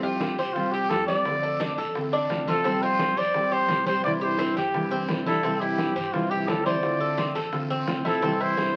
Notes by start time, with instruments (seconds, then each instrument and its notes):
Already playing: upright bass F2, steel-string acoustic guitar F3 G3 C4 G4
0.02 cuban tres F4, trumpet G4, high conga
0.20 high bongo, high conga, short guiro
0.38 upright bass C2, cuban tres C5, muted steel-string acoustic guitar stroke, high conga, short guiro
0.53 steel-string acoustic guitar F3 G3 C4 G4, trumpet F4, high bongo, high conga, long guiro
0.72 trumpet G4, cuban tres G4, high conga
0.89 upright bass F2, steel-string acoustic guitar F3 G3 C4 G4, trumpet A4, high bongo, low bongo, high conga, short guiro
1.07 steel-string acoustic guitar G3 C4 G4, trumpet D5, cuban tres D5, high conga, short guiro
1.25 steel-string acoustic guitar D3 A3 C4 F4, high bongo, high conga, long guiro
1.43 cuban tres A4, high bongo, high conga
1.60 cuban tres D4, high bongo, high conga, short guiro
1.78 upright bass A1, cuban tres A4, muted steel-string acoustic guitar stroke, high bongo, high conga, short guiro
1.95 steel-string acoustic guitar D3 A3 C4 F4, high bongo, high conga, long guiro
2.12 cuban tres D4, high bongo, high conga
2.30 upright bass F1, steel-string acoustic guitar D3 A3 C4 F4, high bongo, low bongo, high conga, short guiro
2.47 steel-string acoustic guitar A3 C4 F4, cuban tres F4, trumpet A4, high conga, short guiro
2.64 steel-string acoustic guitar F3 G3 C4 G4, cuban tres C4, high bongo, long guiro
2.82 cuban tres F4, trumpet C5, high conga
2.99 high bongo, high conga, short guiro
3.17 upright bass F2, cuban tres C5, trumpet D5, muted steel-string acoustic guitar stroke, high conga, short guiro
3.34 steel-string acoustic guitar F3 G3 C4 G4, high bongo, high conga, long guiro
3.51 cuban tres G4, trumpet C5, high conga
3.69 upright bass C2, steel-string acoustic guitar F3 G3 C4 G4, high bongo, low bongo, high conga, short guiro
3.86 steel-string acoustic guitar G3 C4 G4, cuban tres C5, trumpet C5, high conga, short guiro
4.04 steel-string acoustic guitar C3 E3 G3 D4 E4, trumpet D5, high bongo, long guiro
4.21 cuban tres G4, trumpet C5, high bongo, high conga
4.38 cuban tres C4, high bongo, high conga, short guiro
4.56 upright bass G2, cuban tres G4, trumpet G4, muted steel-string acoustic guitar stroke, high bongo, high conga, short guiro
4.74 steel-string acoustic guitar C3 E3 G3 D4 E4, high bongo, high conga, long guiro
4.91 cuban tres C4, high bongo, high conga
5.09 upright bass C2, steel-string acoustic guitar E3 G3 D4 E4, high bongo, low bongo, high conga, short guiro
5.26 steel-string acoustic guitar E3 G3 D4 E4, cuban tres E4, trumpet A4, high conga, short guiro
5.43 steel-string acoustic guitar C3 E3 G3 C4 E4, cuban tres C4, high bongo, long guiro
5.60 cuban tres E4, trumpet G4, high conga
5.78 high bongo, high conga, short guiro
5.96 upright bass G2, cuban tres C5, muted steel-string acoustic guitar stroke, high conga, short guiro
6.13 steel-string acoustic guitar C3 E3 G3 C4 E4, trumpet F4, high bongo, high conga, long guiro
6.30 trumpet G4, cuban tres G4, high conga
6.48 upright bass D2, steel-string acoustic guitar E3 G3 C4 E4, trumpet A4, high bongo, low bongo, high conga, short guiro
6.64 steel-string acoustic guitar E3 G3 C4 E4, cuban tres C5, trumpet D5, high conga, short guiro
6.82 steel-string acoustic guitar D3 A3 C4 F4, high bongo, high conga, long guiro
7.00 cuban tres A4, high bongo, high conga
7.18 cuban tres C4, high bongo, high conga, short guiro
7.35 upright bass A1, cuban tres A4, muted steel-string acoustic guitar stroke, high bongo, high conga, short guiro
7.52 steel-string acoustic guitar D3 A3 C4 F4, high bongo, high conga, long guiro
7.70 cuban tres C4, high bongo, high conga
7.87 upright bass C2, steel-string acoustic guitar D3 A3 C4 F4, high bongo, low bongo, high conga, short guiro
8.05 steel-string acoustic guitar A3 C4 F4, cuban tres E4, trumpet A4, high conga, short guiro
8.22 steel-string acoustic guitar C3 E3 G3 C4 E4, cuban tres C4, high bongo, high conga, long guiro
8.40 cuban tres E4, trumpet C5, high conga
8.57 high bongo, high conga, short guiro